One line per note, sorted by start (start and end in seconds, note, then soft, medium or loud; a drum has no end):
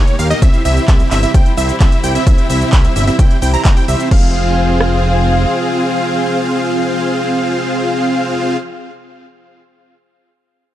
0.00 0.38 D#3 medium
0.00 0.16 A#3 loud
0.00 0.38 A#3 medium
0.00 0.16 D#4 loud
0.00 0.16 G4 medium
0.00 0.38 G4 medium
0.00 0.16 A#4 medium
0.00 0.16 C#5 loud
0.07 closed hi-hat soft
0.07 shaker soft
0.19 0.33 D#2 medium
0.19 0.28 A#3 medium
0.19 0.28 D#4 medium
0.19 0.28 G4 medium
0.19 0.28 A#4 medium
0.19 0.28 F5 medium
0.19 open hi-hat medium
0.19 shaker medium
0.30 0.40 A#3 medium
0.30 0.40 D#4 medium
0.30 0.40 G4 medium
0.30 0.40 A#4 medium
0.30 0.40 D#5 medium
0.30 closed hi-hat soft
0.30 shaker soft
0.42 0.49 C2 loud
0.42 4.08 C3 medium
0.42 4.08 G3 medium
0.42 0.62 C4 loud
0.42 4.08 E4 loud
0.42 0.62 E4 medium
0.42 0.62 G4 medium
0.42 0.62 C5 loud
0.42 0.62 E5 loud
0.42 kick loud
0.42 closed hi-hat loud
0.42 ride medium
0.42 shaker soft
0.54 closed hi-hat soft
0.54 shaker soft
0.65 0.79 C2 medium
0.65 0.85 C4 medium
0.65 0.85 E4 medium
0.65 0.85 G4 medium
0.65 0.85 C5 medium
0.65 0.85 E5 loud
0.65 open hi-hat loud
0.65 shaker medium
0.77 closed hi-hat soft
0.77 shaker soft
0.88 1.03 C2 medium
0.88 1.09 C4 medium
0.88 1.09 E4 medium
0.88 1.09 G4 medium
0.88 1.09 C5 medium
0.88 1.09 E5 medium
0.88 kick loud
0.88 clap loud
0.88 closed hi-hat medium
0.88 ride medium
0.88 shaker soft
1.00 closed hi-hat soft
1.00 shaker soft
1.11 1.26 G1 loud
1.11 1.20 C4 loud
1.11 1.20 E4 medium
1.11 1.20 G4 medium
1.11 1.20 C5 medium
1.11 1.20 E5 loud
1.11 clap medium
1.11 open hi-hat medium
1.11 shaker medium
1.23 1.32 C4 medium
1.23 1.32 E4 medium
1.23 1.32 G4 medium
1.23 1.32 C5 medium
1.23 1.32 E5 medium
1.23 closed hi-hat soft
1.23 shaker soft
1.34 1.42 C2 medium
1.34 1.52 C4 medium
1.34 1.52 E4 medium
1.34 1.52 G4 medium
1.34 1.52 C5 medium
1.34 1.52 G5 medium
1.34 1.52 G5 loud
1.34 kick loud
1.34 closed hi-hat medium
1.34 ride medium
1.34 shaker soft
1.46 closed hi-hat soft
1.46 shaker soft
1.57 1.72 C2 medium
1.57 1.75 C4 medium
1.57 1.75 E4 medium
1.57 1.75 G4 medium
1.57 1.75 C5 medium
1.57 1.75 E5 medium
1.57 open hi-hat loud
1.57 shaker medium
1.69 closed hi-hat soft
1.69 shaker soft
1.80 1.88 C2 loud
1.80 2.00 C4 loud
1.80 2.00 E4 medium
1.80 2.00 G4 medium
1.80 2.00 C5 medium
1.80 2.00 E5 loud
1.80 kick loud
1.80 clap loud
1.80 closed hi-hat loud
1.80 ride medium
1.80 shaker soft
1.92 closed hi-hat soft
1.92 shaker soft
2.04 2.18 C2 medium
2.04 2.12 C4 medium
2.04 2.12 E4 medium
2.04 2.12 G4 medium
2.04 2.12 C5 medium
2.04 2.12 G5 medium
2.04 open hi-hat medium
2.04 shaker medium
2.15 2.25 C4 medium
2.15 2.25 E4 medium
2.15 2.25 G4 medium
2.15 2.25 C5 medium
2.15 2.25 E5 medium
2.15 2.25 E5 loud
2.15 closed hi-hat soft
2.15 shaker soft
2.27 2.34 C2 loud
2.27 2.47 C4 loud
2.27 2.47 E4 medium
2.27 2.47 G4 medium
2.27 2.47 C5 loud
2.27 2.47 E5 loud
2.27 kick loud
2.27 closed hi-hat loud
2.27 ride medium
2.27 shaker soft
2.38 closed hi-hat soft
2.38 shaker soft
2.50 2.64 C2 medium
2.50 2.70 C4 medium
2.50 2.70 E4 medium
2.50 2.70 G4 medium
2.50 2.70 C5 medium
2.50 2.70 E5 loud
2.50 open hi-hat loud
2.50 shaker medium
2.61 closed hi-hat soft
2.61 shaker soft
2.73 2.87 C2 medium
2.73 2.93 C4 medium
2.73 2.93 E4 medium
2.73 2.93 G4 medium
2.73 2.93 C5 medium
2.73 2.93 E5 medium
2.73 kick loud
2.73 clap loud
2.73 closed hi-hat loud
2.73 ride medium
2.73 shaker soft
2.84 closed hi-hat soft
2.84 shaker soft
2.96 3.10 G1 loud
2.96 3.05 C4 medium
2.96 3.05 E4 medium
2.96 3.05 G4 medium
2.96 3.05 C5 medium
2.96 3.05 E5 loud
2.96 open hi-hat medium
2.96 shaker medium
3.07 3.16 C4 medium
3.07 3.16 E4 medium
3.07 3.16 G4 medium
3.07 3.16 C5 medium
3.07 3.16 E5 medium
3.07 closed hi-hat soft
3.07 shaker soft
3.19 3.26 C2 medium
3.19 3.37 C4 medium
3.19 3.37 E4 medium
3.19 3.37 G4 medium
3.19 3.37 C5 medium
3.19 3.37 G5 medium
3.19 3.37 G5 loud
3.19 kick loud
3.19 closed hi-hat loud
3.19 ride medium
3.19 shaker soft
3.31 closed hi-hat soft
3.31 shaker soft
3.42 3.56 C2 loud
3.42 3.51 C4 medium
3.42 3.51 E4 medium
3.42 3.51 G4 medium
3.42 3.51 C5 medium
3.42 3.51 G5 medium
3.42 open hi-hat loud
3.42 shaker medium
3.54 3.62 C4 medium
3.54 3.62 E4 medium
3.54 3.62 G4 medium
3.54 3.62 C5 medium
3.54 3.62 A#5 medium
3.54 closed hi-hat soft
3.54 shaker soft
3.65 3.72 G1 medium
3.65 3.75 C4 medium
3.65 3.75 E4 medium
3.65 3.75 G4 medium
3.65 3.75 C5 medium
3.65 3.75 A#5 medium
3.65 kick loud
3.65 clap loud
3.65 closed hi-hat loud
3.65 ride medium
3.65 shaker soft
3.77 3.85 C4 medium
3.77 3.85 E4 medium
3.77 3.85 G4 medium
3.77 3.85 C5 medium
3.77 3.85 G5 loud
3.77 closed hi-hat soft
3.77 shaker soft
3.88 3.95 C2 loud
3.88 4.09 C4 medium
3.88 4.09 E4 medium
3.88 4.09 G4 medium
3.88 4.09 C5 medium
3.88 4.09 E5 medium
3.88 4.09 E5 loud
3.88 open hi-hat medium
3.88 shaker medium
4.00 closed hi-hat soft
4.00 shaker soft
4.11 5.46 F1 loud
4.11 8.57 F3 medium
4.11 8.57 C4 medium
4.11 8.57 F4 medium
4.11 8.57 G#4 medium
4.11 8.57 C5 medium
4.11 8.57 F5 loud
4.11 8.57 F5 medium
4.11 kick loud
4.11 crash medium
4.81 cross-stick medium